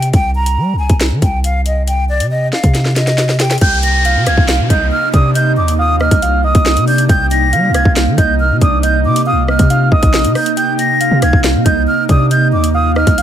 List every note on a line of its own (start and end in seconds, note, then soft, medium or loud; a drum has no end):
0.00 0.12 C3 loud
0.00 closed hi-hat medium
0.13 0.58 C2 loud
0.13 0.31 G5 loud
0.13 kick loud
0.13 closed hi-hat medium
0.35 0.76 A#5 medium
0.46 closed hi-hat medium
0.57 0.75 G3 loud
0.73 0.89 C2 loud
0.79 0.96 G#5 medium
0.89 1.13 C2 loud
0.89 kick medium
0.89 closed hi-hat medium
1.01 snare loud
1.01 closed hi-hat medium
1.11 1.22 D#3 loud
1.22 2.22 C2 loud
1.22 1.39 G5 medium
1.22 kick medium
1.22 closed hi-hat medium
1.44 1.61 F5 medium
1.44 closed hi-hat medium
1.66 1.83 D#5 medium
1.66 closed hi-hat medium
1.88 2.04 G5 medium
1.88 closed hi-hat medium
2.09 2.26 D5 medium
2.20 2.51 C3 loud
2.20 closed hi-hat medium
2.31 2.48 D#5 medium
2.53 2.94 F5 medium
2.53 snare medium
2.64 3.58 C3 loud
2.64 kick medium
2.64 closed hi-hat medium
2.75 snare medium
2.75 closed hi-hat medium
2.85 snare medium
2.96 3.37 D#5 medium
2.96 snare medium
2.96 closed hi-hat medium
3.07 snare medium
3.07 closed hi-hat medium
3.18 snare medium
3.18 closed hi-hat medium
3.29 snare medium
3.40 3.57 G5 medium
3.40 snare loud
3.40 closed hi-hat medium
3.51 snare medium
3.51 closed hi-hat medium
3.58 4.17 C2 loud
3.58 4.02 G5 loud
3.58 3.78 G6 loud
3.58 closed hi-hat medium
3.58 crash loud
3.61 13.22 C3 medium
3.61 13.22 A#3 medium
3.61 13.22 D#4 medium
3.61 kick loud
3.61 closed hi-hat medium
3.61 downlifter medium
3.65 closed hi-hat soft
3.83 4.24 A#6 medium
3.83 closed hi-hat medium
4.05 4.66 F5 loud
4.05 closed hi-hat medium
4.16 4.28 C3 loud
4.26 4.37 C2 loud
4.26 4.44 G#6 medium
4.26 cross-stick medium
4.26 closed hi-hat medium
4.38 4.61 C2 loud
4.38 kick medium
4.48 snare loud
4.48 closed hi-hat medium
4.59 4.70 C3 loud
4.70 4.91 C2 loud
4.70 5.11 D#5 medium
4.70 4.87 G6 medium
4.70 kick medium
4.70 closed hi-hat medium
4.92 5.09 F6 medium
5.14 5.59 C3 loud
5.14 5.34 D5 medium
5.14 5.31 D#6 medium
5.14 kick medium
5.14 closed hi-hat medium
5.35 5.76 D#5 medium
5.35 5.52 G6 loud
5.35 closed hi-hat medium
5.57 6.09 D#2 loud
5.57 5.74 D6 medium
5.68 closed hi-hat medium
5.79 6.00 F5 medium
5.79 5.96 D#6 medium
6.01 6.21 D#5 medium
6.01 6.41 F6 medium
6.01 cross-stick medium
6.11 6.53 C2 loud
6.11 kick medium
6.11 closed hi-hat medium
6.22 6.43 F5 medium
6.22 closed hi-hat medium
6.44 6.85 D#5 medium
6.44 6.85 D#6 medium
6.55 6.78 C2 loud
6.55 kick loud
6.55 closed hi-hat medium
6.66 snare loud
6.77 7.08 C3 loud
6.77 closed hi-hat medium
6.87 7.08 D5 medium
6.87 7.04 G6 medium
6.87 open hi-hat medium
6.98 closed hi-hat medium
7.09 7.54 C2 loud
7.09 7.50 G5 loud
7.09 7.26 G6 loud
7.09 kick loud
7.09 closed hi-hat medium
7.31 7.72 A#6 medium
7.31 closed hi-hat medium
7.53 7.71 G3 loud
7.53 8.14 F5 medium
7.53 closed hi-hat medium
7.69 7.85 C2 loud
7.74 7.91 G#6 medium
7.74 cross-stick medium
7.74 closed hi-hat medium
7.85 8.09 C2 loud
7.85 kick medium
7.96 snare loud
7.96 closed hi-hat medium
8.07 8.17 D#3 loud
8.18 8.52 C2 loud
8.18 8.59 D#5 medium
8.18 8.35 G6 medium
8.18 kick medium
8.18 closed hi-hat medium
8.40 8.57 F6 medium
8.51 8.61 C3 loud
8.61 9.06 C2 loud
8.61 8.82 D5 medium
8.61 8.79 D#6 medium
8.61 kick medium
8.61 closed hi-hat medium
8.83 9.24 D#5 loud
8.83 9.00 G6 loud
8.83 closed hi-hat medium
9.05 9.34 C3 loud
9.05 9.22 D6 medium
9.16 closed hi-hat medium
9.27 9.47 F5 loud
9.27 9.44 D#6 loud
9.32 9.58 C2 loud
9.48 9.69 D#5 medium
9.48 9.89 F6 medium
9.48 cross-stick medium
9.59 9.91 C3 loud
9.59 kick loud
9.59 closed hi-hat medium
9.70 9.91 F5 loud
9.70 closed hi-hat medium
9.92 10.02 C2 loud
9.92 10.53 D#5 medium
9.92 10.33 D#6 medium
9.92 kick medium
10.03 10.26 A#1 loud
10.03 kick loud
10.03 closed hi-hat medium
10.14 snare loud
10.24 10.35 C3 loud
10.24 closed hi-hat medium
10.35 10.52 G6 medium
10.35 cross-stick medium
10.35 open hi-hat medium
10.46 closed hi-hat medium
10.57 10.98 G5 loud
10.57 10.74 G6 loud
10.57 closed hi-hat medium
10.79 11.20 A#6 medium
10.79 closed hi-hat medium
11.01 11.62 F5 loud
11.01 closed hi-hat medium
11.11 11.24 C3 loud
11.22 11.33 C2 loud
11.22 11.39 G#6 medium
11.22 cross-stick medium
11.22 closed hi-hat medium
11.33 11.56 C2 loud
11.33 kick medium
11.44 snare loud
11.44 closed hi-hat medium
11.55 11.65 C3 loud
11.65 11.87 C2 loud
11.65 12.07 D#5 medium
11.65 11.83 G6 medium
11.65 kick medium
11.65 closed hi-hat medium
11.87 12.04 F6 medium
12.09 12.54 C3 loud
12.09 12.30 D5 medium
12.09 12.26 D#6 medium
12.09 kick medium
12.09 closed hi-hat medium
12.31 12.72 D#5 medium
12.31 12.48 G6 loud
12.31 closed hi-hat medium
12.53 13.04 D#2 loud
12.53 12.70 D6 medium
12.64 closed hi-hat medium
12.74 12.95 F5 medium
12.74 12.91 D#6 medium
12.96 13.17 D#5 medium
12.96 13.22 F6 medium
12.96 cross-stick medium
13.07 13.22 C2 loud
13.07 kick loud
13.07 closed hi-hat medium
13.18 13.22 F5 medium
13.18 closed hi-hat medium